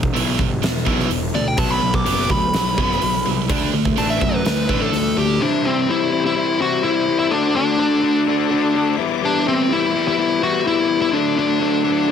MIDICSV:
0, 0, Header, 1, 6, 480
1, 0, Start_track
1, 0, Key_signature, 1, "minor"
1, 0, Tempo, 477707
1, 1594, Time_signature, 4, 2, 24, 8
1, 12174, End_track
2, 0, Start_track
2, 0, Title_t, "String section"
2, 0, Program_c, 0, 48
2, 5416, Note_on_c, 0, 84, 82
2, 5420, Note_on_c, 0, 67, 79
2, 5432, Note_on_c, 0, 76, 73
2, 7323, Note_off_c, 0, 84, 0
2, 7325, Note_off_c, 0, 67, 0
2, 7331, Note_off_c, 0, 76, 0
2, 7346, Note_on_c, 0, 78, 72
2, 7349, Note_on_c, 0, 86, 94
2, 7350, Note_on_c, 0, 69, 81
2, 9009, Note_off_c, 0, 78, 0
2, 9011, Note_off_c, 0, 69, 0
2, 9034, Note_on_c, 0, 67, 88
2, 9041, Note_on_c, 0, 76, 80
2, 11149, Note_off_c, 0, 86, 0
2, 11170, Note_off_c, 0, 67, 0
2, 11174, Note_off_c, 0, 76, 0
2, 11188, Note_on_c, 0, 78, 77
2, 11189, Note_on_c, 0, 69, 79
2, 11191, Note_on_c, 0, 86, 88
2, 12174, Note_off_c, 0, 69, 0
2, 12174, Note_off_c, 0, 78, 0
2, 12174, Note_off_c, 0, 86, 0
2, 12174, End_track
3, 0, Start_track
3, 0, Title_t, "Lead electric guitar"
3, 0, Program_c, 1, 29
3, 1355, Note_on_c, 1, 74, 94
3, 1471, Note_off_c, 1, 74, 0
3, 1484, Note_on_c, 1, 79, 100
3, 1588, Note_off_c, 1, 79, 0
3, 1588, Note_on_c, 1, 81, 95
3, 1712, Note_off_c, 1, 81, 0
3, 1712, Note_on_c, 1, 83, 94
3, 1946, Note_off_c, 1, 83, 0
3, 1960, Note_on_c, 1, 86, 88
3, 2307, Note_off_c, 1, 86, 0
3, 2324, Note_on_c, 1, 83, 104
3, 3720, Note_off_c, 1, 83, 0
3, 4000, Note_on_c, 1, 81, 108
3, 4114, Note_off_c, 1, 81, 0
3, 4119, Note_on_c, 1, 76, 94
3, 4369, Note_off_c, 1, 76, 0
3, 4369, Note_on_c, 1, 71, 98
3, 4828, Note_off_c, 1, 71, 0
3, 4839, Note_on_c, 1, 69, 99
3, 5186, Note_off_c, 1, 69, 0
3, 5207, Note_on_c, 1, 67, 108
3, 5434, Note_off_c, 1, 67, 0
3, 5442, Note_on_c, 1, 62, 93
3, 5680, Note_on_c, 1, 60, 88
3, 5685, Note_off_c, 1, 62, 0
3, 5924, Note_off_c, 1, 60, 0
3, 5927, Note_on_c, 1, 64, 101
3, 6255, Note_off_c, 1, 64, 0
3, 6293, Note_on_c, 1, 64, 107
3, 6618, Note_off_c, 1, 64, 0
3, 6648, Note_on_c, 1, 66, 113
3, 6864, Note_off_c, 1, 66, 0
3, 6868, Note_on_c, 1, 64, 110
3, 7212, Note_off_c, 1, 64, 0
3, 7225, Note_on_c, 1, 64, 99
3, 7348, Note_on_c, 1, 62, 101
3, 7352, Note_off_c, 1, 64, 0
3, 7586, Note_off_c, 1, 62, 0
3, 7598, Note_on_c, 1, 62, 90
3, 8992, Note_off_c, 1, 62, 0
3, 9297, Note_on_c, 1, 62, 103
3, 9507, Note_off_c, 1, 62, 0
3, 9526, Note_on_c, 1, 60, 88
3, 9764, Note_off_c, 1, 60, 0
3, 9775, Note_on_c, 1, 64, 100
3, 10113, Note_off_c, 1, 64, 0
3, 10125, Note_on_c, 1, 64, 99
3, 10478, Note_off_c, 1, 64, 0
3, 10482, Note_on_c, 1, 66, 108
3, 10699, Note_off_c, 1, 66, 0
3, 10723, Note_on_c, 1, 64, 109
3, 11055, Note_off_c, 1, 64, 0
3, 11067, Note_on_c, 1, 64, 98
3, 11186, Note_off_c, 1, 64, 0
3, 11186, Note_on_c, 1, 62, 98
3, 11428, Note_off_c, 1, 62, 0
3, 11441, Note_on_c, 1, 62, 84
3, 12174, Note_off_c, 1, 62, 0
3, 12174, End_track
4, 0, Start_track
4, 0, Title_t, "Overdriven electric guitar"
4, 0, Program_c, 2, 29
4, 0, Note_on_c, 2, 40, 78
4, 0, Note_on_c, 2, 47, 85
4, 126, Note_off_c, 2, 40, 0
4, 128, Note_off_c, 2, 47, 0
4, 137, Note_on_c, 2, 40, 89
4, 148, Note_on_c, 2, 47, 104
4, 152, Note_on_c, 2, 52, 101
4, 370, Note_off_c, 2, 40, 0
4, 375, Note_off_c, 2, 47, 0
4, 377, Note_off_c, 2, 52, 0
4, 388, Note_on_c, 2, 40, 78
4, 392, Note_on_c, 2, 47, 87
4, 606, Note_off_c, 2, 40, 0
4, 608, Note_off_c, 2, 47, 0
4, 628, Note_on_c, 2, 40, 76
4, 632, Note_on_c, 2, 47, 77
4, 846, Note_off_c, 2, 40, 0
4, 848, Note_off_c, 2, 47, 0
4, 864, Note_on_c, 2, 40, 92
4, 872, Note_on_c, 2, 47, 93
4, 879, Note_on_c, 2, 52, 102
4, 1094, Note_off_c, 2, 40, 0
4, 1098, Note_off_c, 2, 47, 0
4, 1101, Note_off_c, 2, 52, 0
4, 1105, Note_on_c, 2, 40, 74
4, 1112, Note_on_c, 2, 47, 80
4, 1325, Note_off_c, 2, 40, 0
4, 1329, Note_off_c, 2, 47, 0
4, 1345, Note_on_c, 2, 40, 62
4, 1352, Note_on_c, 2, 47, 73
4, 1565, Note_off_c, 2, 40, 0
4, 1565, Note_off_c, 2, 47, 0
4, 1577, Note_on_c, 2, 47, 93
4, 1582, Note_on_c, 2, 54, 102
4, 1588, Note_on_c, 2, 59, 103
4, 1807, Note_off_c, 2, 47, 0
4, 1807, Note_off_c, 2, 54, 0
4, 1817, Note_off_c, 2, 59, 0
4, 1819, Note_on_c, 2, 47, 72
4, 1819, Note_on_c, 2, 54, 84
4, 2041, Note_off_c, 2, 47, 0
4, 2043, Note_off_c, 2, 54, 0
4, 2053, Note_on_c, 2, 47, 93
4, 2062, Note_on_c, 2, 54, 112
4, 2065, Note_on_c, 2, 59, 96
4, 2289, Note_off_c, 2, 47, 0
4, 2294, Note_off_c, 2, 54, 0
4, 2295, Note_off_c, 2, 59, 0
4, 2302, Note_on_c, 2, 47, 79
4, 2307, Note_on_c, 2, 54, 88
4, 2524, Note_off_c, 2, 47, 0
4, 2527, Note_off_c, 2, 54, 0
4, 2547, Note_on_c, 2, 47, 67
4, 2555, Note_on_c, 2, 54, 75
4, 2767, Note_off_c, 2, 47, 0
4, 2771, Note_off_c, 2, 54, 0
4, 2791, Note_on_c, 2, 47, 81
4, 2796, Note_on_c, 2, 54, 80
4, 2807, Note_on_c, 2, 59, 103
4, 3016, Note_off_c, 2, 47, 0
4, 3021, Note_off_c, 2, 54, 0
4, 3027, Note_off_c, 2, 59, 0
4, 3028, Note_on_c, 2, 47, 77
4, 3033, Note_on_c, 2, 54, 86
4, 3248, Note_off_c, 2, 47, 0
4, 3250, Note_off_c, 2, 54, 0
4, 3270, Note_on_c, 2, 47, 73
4, 3276, Note_on_c, 2, 54, 65
4, 3488, Note_off_c, 2, 47, 0
4, 3492, Note_off_c, 2, 54, 0
4, 3503, Note_on_c, 2, 50, 84
4, 3514, Note_on_c, 2, 57, 106
4, 3518, Note_on_c, 2, 62, 99
4, 3735, Note_off_c, 2, 50, 0
4, 3740, Note_off_c, 2, 57, 0
4, 3742, Note_off_c, 2, 62, 0
4, 3753, Note_on_c, 2, 50, 74
4, 3754, Note_on_c, 2, 57, 93
4, 3970, Note_off_c, 2, 50, 0
4, 3971, Note_off_c, 2, 57, 0
4, 3994, Note_on_c, 2, 50, 88
4, 4000, Note_on_c, 2, 57, 103
4, 4002, Note_on_c, 2, 62, 105
4, 4220, Note_off_c, 2, 50, 0
4, 4224, Note_off_c, 2, 57, 0
4, 4224, Note_off_c, 2, 62, 0
4, 4238, Note_on_c, 2, 50, 77
4, 4242, Note_on_c, 2, 57, 83
4, 4453, Note_off_c, 2, 50, 0
4, 4455, Note_off_c, 2, 57, 0
4, 4484, Note_on_c, 2, 50, 68
4, 4485, Note_on_c, 2, 57, 77
4, 4695, Note_off_c, 2, 50, 0
4, 4696, Note_off_c, 2, 57, 0
4, 4709, Note_on_c, 2, 50, 89
4, 4717, Note_on_c, 2, 57, 88
4, 4722, Note_on_c, 2, 62, 105
4, 4938, Note_off_c, 2, 50, 0
4, 4942, Note_off_c, 2, 57, 0
4, 4944, Note_off_c, 2, 62, 0
4, 4955, Note_on_c, 2, 50, 68
4, 4959, Note_on_c, 2, 57, 92
4, 5171, Note_off_c, 2, 50, 0
4, 5173, Note_off_c, 2, 57, 0
4, 5191, Note_on_c, 2, 50, 67
4, 5195, Note_on_c, 2, 57, 72
4, 5409, Note_off_c, 2, 50, 0
4, 5411, Note_off_c, 2, 57, 0
4, 5426, Note_on_c, 2, 48, 101
4, 5436, Note_on_c, 2, 52, 106
4, 5441, Note_on_c, 2, 55, 108
4, 5450, Note_on_c, 2, 60, 100
4, 5455, Note_on_c, 2, 64, 120
4, 5647, Note_off_c, 2, 64, 0
4, 5659, Note_on_c, 2, 64, 76
4, 5660, Note_off_c, 2, 60, 0
4, 5672, Note_on_c, 2, 60, 79
4, 5675, Note_off_c, 2, 55, 0
4, 5687, Note_on_c, 2, 55, 72
4, 5891, Note_off_c, 2, 48, 0
4, 5900, Note_off_c, 2, 52, 0
4, 5903, Note_on_c, 2, 48, 104
4, 5906, Note_off_c, 2, 55, 0
4, 5912, Note_on_c, 2, 52, 102
4, 5914, Note_off_c, 2, 60, 0
4, 5918, Note_on_c, 2, 55, 106
4, 5920, Note_off_c, 2, 64, 0
4, 5926, Note_on_c, 2, 60, 110
4, 5932, Note_on_c, 2, 64, 109
4, 6123, Note_off_c, 2, 64, 0
4, 6135, Note_on_c, 2, 64, 85
4, 6137, Note_off_c, 2, 60, 0
4, 6149, Note_on_c, 2, 60, 74
4, 6152, Note_off_c, 2, 55, 0
4, 6164, Note_on_c, 2, 55, 73
4, 6367, Note_off_c, 2, 52, 0
4, 6379, Note_off_c, 2, 55, 0
4, 6379, Note_on_c, 2, 52, 77
4, 6385, Note_off_c, 2, 60, 0
4, 6388, Note_off_c, 2, 48, 0
4, 6391, Note_on_c, 2, 55, 80
4, 6397, Note_off_c, 2, 64, 0
4, 6397, Note_on_c, 2, 60, 85
4, 6409, Note_on_c, 2, 64, 93
4, 6603, Note_off_c, 2, 64, 0
4, 6615, Note_off_c, 2, 60, 0
4, 6615, Note_on_c, 2, 64, 89
4, 6621, Note_off_c, 2, 55, 0
4, 6627, Note_on_c, 2, 60, 81
4, 6628, Note_off_c, 2, 52, 0
4, 6633, Note_on_c, 2, 55, 79
4, 6641, Note_on_c, 2, 52, 79
4, 6644, Note_on_c, 2, 48, 78
4, 6845, Note_off_c, 2, 52, 0
4, 6856, Note_off_c, 2, 55, 0
4, 6857, Note_on_c, 2, 52, 79
4, 6866, Note_off_c, 2, 60, 0
4, 6868, Note_on_c, 2, 55, 86
4, 6875, Note_off_c, 2, 64, 0
4, 6878, Note_on_c, 2, 60, 90
4, 6887, Note_on_c, 2, 64, 97
4, 7082, Note_off_c, 2, 64, 0
4, 7094, Note_on_c, 2, 64, 70
4, 7098, Note_off_c, 2, 60, 0
4, 7110, Note_on_c, 2, 60, 67
4, 7114, Note_off_c, 2, 55, 0
4, 7117, Note_off_c, 2, 48, 0
4, 7127, Note_on_c, 2, 55, 57
4, 7327, Note_off_c, 2, 52, 0
4, 7328, Note_off_c, 2, 64, 0
4, 7331, Note_on_c, 2, 50, 103
4, 7336, Note_off_c, 2, 60, 0
4, 7339, Note_off_c, 2, 55, 0
4, 7343, Note_on_c, 2, 57, 102
4, 7354, Note_on_c, 2, 62, 114
4, 7364, Note_on_c, 2, 66, 114
4, 7568, Note_off_c, 2, 66, 0
4, 7580, Note_on_c, 2, 66, 75
4, 7589, Note_off_c, 2, 62, 0
4, 7593, Note_on_c, 2, 62, 69
4, 7594, Note_off_c, 2, 57, 0
4, 7607, Note_on_c, 2, 57, 62
4, 7803, Note_off_c, 2, 50, 0
4, 7815, Note_on_c, 2, 50, 104
4, 7817, Note_off_c, 2, 57, 0
4, 7829, Note_on_c, 2, 57, 109
4, 7832, Note_off_c, 2, 62, 0
4, 7835, Note_off_c, 2, 66, 0
4, 7836, Note_on_c, 2, 62, 110
4, 7847, Note_on_c, 2, 66, 123
4, 8042, Note_off_c, 2, 66, 0
4, 8054, Note_on_c, 2, 66, 77
4, 8067, Note_off_c, 2, 62, 0
4, 8068, Note_off_c, 2, 57, 0
4, 8071, Note_on_c, 2, 62, 80
4, 8081, Note_on_c, 2, 57, 67
4, 8292, Note_off_c, 2, 50, 0
4, 8301, Note_off_c, 2, 57, 0
4, 8304, Note_on_c, 2, 50, 69
4, 8313, Note_on_c, 2, 57, 77
4, 8316, Note_off_c, 2, 62, 0
4, 8320, Note_off_c, 2, 66, 0
4, 8320, Note_on_c, 2, 62, 91
4, 8332, Note_on_c, 2, 66, 75
4, 8531, Note_off_c, 2, 66, 0
4, 8544, Note_on_c, 2, 66, 87
4, 8551, Note_off_c, 2, 57, 0
4, 8552, Note_off_c, 2, 62, 0
4, 8556, Note_on_c, 2, 62, 85
4, 8562, Note_off_c, 2, 50, 0
4, 8564, Note_on_c, 2, 57, 88
4, 8574, Note_on_c, 2, 50, 78
4, 8778, Note_off_c, 2, 50, 0
4, 8785, Note_off_c, 2, 57, 0
4, 8790, Note_on_c, 2, 50, 91
4, 8797, Note_on_c, 2, 57, 81
4, 8802, Note_off_c, 2, 66, 0
4, 8805, Note_off_c, 2, 62, 0
4, 8809, Note_on_c, 2, 62, 96
4, 8814, Note_on_c, 2, 66, 90
4, 9015, Note_off_c, 2, 50, 0
4, 9016, Note_off_c, 2, 66, 0
4, 9018, Note_off_c, 2, 57, 0
4, 9020, Note_on_c, 2, 64, 93
4, 9029, Note_off_c, 2, 62, 0
4, 9033, Note_on_c, 2, 59, 84
4, 9042, Note_on_c, 2, 55, 83
4, 9051, Note_on_c, 2, 52, 82
4, 9250, Note_off_c, 2, 52, 0
4, 9262, Note_on_c, 2, 52, 108
4, 9263, Note_off_c, 2, 55, 0
4, 9272, Note_off_c, 2, 59, 0
4, 9275, Note_on_c, 2, 55, 107
4, 9282, Note_off_c, 2, 64, 0
4, 9284, Note_on_c, 2, 59, 119
4, 9294, Note_on_c, 2, 64, 119
4, 9487, Note_off_c, 2, 64, 0
4, 9499, Note_on_c, 2, 64, 81
4, 9500, Note_off_c, 2, 59, 0
4, 9513, Note_on_c, 2, 59, 75
4, 9514, Note_off_c, 2, 55, 0
4, 9526, Note_on_c, 2, 55, 70
4, 9721, Note_off_c, 2, 52, 0
4, 9733, Note_on_c, 2, 52, 104
4, 9736, Note_off_c, 2, 55, 0
4, 9742, Note_off_c, 2, 59, 0
4, 9748, Note_on_c, 2, 55, 119
4, 9752, Note_off_c, 2, 64, 0
4, 9754, Note_on_c, 2, 59, 98
4, 9764, Note_on_c, 2, 64, 121
4, 9967, Note_off_c, 2, 64, 0
4, 9979, Note_on_c, 2, 64, 83
4, 9980, Note_off_c, 2, 59, 0
4, 9992, Note_on_c, 2, 59, 75
4, 9995, Note_off_c, 2, 55, 0
4, 10007, Note_on_c, 2, 55, 67
4, 10205, Note_off_c, 2, 52, 0
4, 10217, Note_on_c, 2, 52, 68
4, 10219, Note_off_c, 2, 55, 0
4, 10224, Note_off_c, 2, 59, 0
4, 10231, Note_on_c, 2, 55, 78
4, 10234, Note_off_c, 2, 64, 0
4, 10237, Note_on_c, 2, 59, 80
4, 10246, Note_on_c, 2, 64, 88
4, 10443, Note_off_c, 2, 64, 0
4, 10454, Note_off_c, 2, 59, 0
4, 10455, Note_on_c, 2, 64, 84
4, 10465, Note_off_c, 2, 55, 0
4, 10466, Note_on_c, 2, 59, 85
4, 10472, Note_off_c, 2, 52, 0
4, 10477, Note_on_c, 2, 55, 71
4, 10484, Note_on_c, 2, 52, 67
4, 10682, Note_off_c, 2, 52, 0
4, 10693, Note_off_c, 2, 55, 0
4, 10694, Note_on_c, 2, 52, 80
4, 10704, Note_off_c, 2, 59, 0
4, 10706, Note_on_c, 2, 55, 84
4, 10709, Note_off_c, 2, 64, 0
4, 10716, Note_on_c, 2, 59, 86
4, 10721, Note_on_c, 2, 64, 86
4, 10919, Note_off_c, 2, 64, 0
4, 10931, Note_on_c, 2, 64, 68
4, 10933, Note_off_c, 2, 59, 0
4, 10945, Note_off_c, 2, 55, 0
4, 10945, Note_on_c, 2, 59, 74
4, 10957, Note_on_c, 2, 55, 61
4, 11166, Note_off_c, 2, 52, 0
4, 11166, Note_off_c, 2, 64, 0
4, 11170, Note_on_c, 2, 50, 106
4, 11172, Note_off_c, 2, 59, 0
4, 11179, Note_off_c, 2, 55, 0
4, 11184, Note_on_c, 2, 54, 114
4, 11194, Note_on_c, 2, 57, 114
4, 11204, Note_on_c, 2, 62, 117
4, 11401, Note_off_c, 2, 62, 0
4, 11414, Note_on_c, 2, 62, 79
4, 11418, Note_off_c, 2, 57, 0
4, 11430, Note_off_c, 2, 54, 0
4, 11430, Note_on_c, 2, 57, 68
4, 11442, Note_on_c, 2, 54, 69
4, 11638, Note_off_c, 2, 50, 0
4, 11650, Note_on_c, 2, 50, 101
4, 11651, Note_off_c, 2, 54, 0
4, 11661, Note_off_c, 2, 57, 0
4, 11664, Note_on_c, 2, 54, 102
4, 11672, Note_off_c, 2, 62, 0
4, 11673, Note_on_c, 2, 57, 107
4, 11684, Note_on_c, 2, 62, 110
4, 11880, Note_off_c, 2, 62, 0
4, 11892, Note_on_c, 2, 62, 82
4, 11894, Note_off_c, 2, 57, 0
4, 11906, Note_on_c, 2, 57, 70
4, 11907, Note_off_c, 2, 54, 0
4, 11919, Note_on_c, 2, 54, 73
4, 12128, Note_off_c, 2, 50, 0
4, 12139, Note_off_c, 2, 54, 0
4, 12140, Note_on_c, 2, 50, 64
4, 12150, Note_off_c, 2, 57, 0
4, 12159, Note_off_c, 2, 62, 0
4, 12174, Note_off_c, 2, 50, 0
4, 12174, End_track
5, 0, Start_track
5, 0, Title_t, "Picked electric bass"
5, 0, Program_c, 3, 34
5, 0, Note_on_c, 3, 28, 85
5, 115, Note_off_c, 3, 28, 0
5, 162, Note_on_c, 3, 35, 81
5, 356, Note_off_c, 3, 35, 0
5, 396, Note_on_c, 3, 31, 95
5, 592, Note_off_c, 3, 31, 0
5, 633, Note_on_c, 3, 28, 90
5, 830, Note_off_c, 3, 28, 0
5, 869, Note_on_c, 3, 35, 81
5, 1068, Note_off_c, 3, 35, 0
5, 1104, Note_on_c, 3, 28, 86
5, 1306, Note_off_c, 3, 28, 0
5, 1352, Note_on_c, 3, 38, 89
5, 1550, Note_off_c, 3, 38, 0
5, 1589, Note_on_c, 3, 35, 94
5, 1789, Note_off_c, 3, 35, 0
5, 1830, Note_on_c, 3, 35, 84
5, 2030, Note_off_c, 3, 35, 0
5, 2078, Note_on_c, 3, 30, 94
5, 2274, Note_off_c, 3, 30, 0
5, 2315, Note_on_c, 3, 38, 87
5, 2513, Note_off_c, 3, 38, 0
5, 2562, Note_on_c, 3, 35, 87
5, 2757, Note_off_c, 3, 35, 0
5, 2798, Note_on_c, 3, 30, 92
5, 2995, Note_off_c, 3, 30, 0
5, 3049, Note_on_c, 3, 35, 92
5, 3241, Note_off_c, 3, 35, 0
5, 3284, Note_on_c, 3, 36, 88
5, 3479, Note_off_c, 3, 36, 0
5, 3517, Note_on_c, 3, 38, 92
5, 3714, Note_off_c, 3, 38, 0
5, 3754, Note_on_c, 3, 38, 95
5, 3953, Note_off_c, 3, 38, 0
5, 4000, Note_on_c, 3, 33, 88
5, 4196, Note_off_c, 3, 33, 0
5, 4237, Note_on_c, 3, 42, 92
5, 4434, Note_off_c, 3, 42, 0
5, 4486, Note_on_c, 3, 38, 93
5, 4679, Note_off_c, 3, 38, 0
5, 4718, Note_on_c, 3, 33, 85
5, 4915, Note_off_c, 3, 33, 0
5, 4945, Note_on_c, 3, 38, 90
5, 5147, Note_off_c, 3, 38, 0
5, 5200, Note_on_c, 3, 38, 87
5, 5396, Note_off_c, 3, 38, 0
5, 12174, End_track
6, 0, Start_track
6, 0, Title_t, "Drums"
6, 31, Note_on_c, 9, 36, 82
6, 132, Note_off_c, 9, 36, 0
6, 164, Note_on_c, 9, 46, 56
6, 264, Note_off_c, 9, 46, 0
6, 391, Note_on_c, 9, 36, 85
6, 492, Note_off_c, 9, 36, 0
6, 634, Note_on_c, 9, 46, 54
6, 643, Note_on_c, 9, 38, 104
6, 735, Note_off_c, 9, 46, 0
6, 744, Note_off_c, 9, 38, 0
6, 869, Note_on_c, 9, 36, 82
6, 970, Note_off_c, 9, 36, 0
6, 1002, Note_on_c, 9, 38, 30
6, 1103, Note_off_c, 9, 38, 0
6, 1113, Note_on_c, 9, 46, 51
6, 1213, Note_off_c, 9, 46, 0
6, 1582, Note_on_c, 9, 46, 61
6, 1586, Note_on_c, 9, 36, 107
6, 1683, Note_off_c, 9, 46, 0
6, 1687, Note_off_c, 9, 36, 0
6, 1947, Note_on_c, 9, 36, 89
6, 2048, Note_off_c, 9, 36, 0
6, 2073, Note_on_c, 9, 46, 66
6, 2173, Note_off_c, 9, 46, 0
6, 2309, Note_on_c, 9, 36, 88
6, 2410, Note_off_c, 9, 36, 0
6, 2548, Note_on_c, 9, 46, 56
6, 2557, Note_on_c, 9, 38, 113
6, 2648, Note_off_c, 9, 46, 0
6, 2657, Note_off_c, 9, 38, 0
6, 2792, Note_on_c, 9, 36, 92
6, 2893, Note_off_c, 9, 36, 0
6, 2929, Note_on_c, 9, 38, 29
6, 3029, Note_off_c, 9, 38, 0
6, 3032, Note_on_c, 9, 46, 62
6, 3132, Note_off_c, 9, 46, 0
6, 3510, Note_on_c, 9, 46, 56
6, 3513, Note_on_c, 9, 36, 106
6, 3610, Note_off_c, 9, 46, 0
6, 3613, Note_off_c, 9, 36, 0
6, 3872, Note_on_c, 9, 36, 83
6, 3973, Note_off_c, 9, 36, 0
6, 3993, Note_on_c, 9, 46, 54
6, 4093, Note_off_c, 9, 46, 0
6, 4234, Note_on_c, 9, 36, 85
6, 4335, Note_off_c, 9, 36, 0
6, 4477, Note_on_c, 9, 46, 55
6, 4486, Note_on_c, 9, 38, 116
6, 4577, Note_off_c, 9, 46, 0
6, 4586, Note_off_c, 9, 38, 0
6, 4714, Note_on_c, 9, 36, 87
6, 4814, Note_off_c, 9, 36, 0
6, 4957, Note_on_c, 9, 46, 53
6, 5057, Note_off_c, 9, 46, 0
6, 12174, End_track
0, 0, End_of_file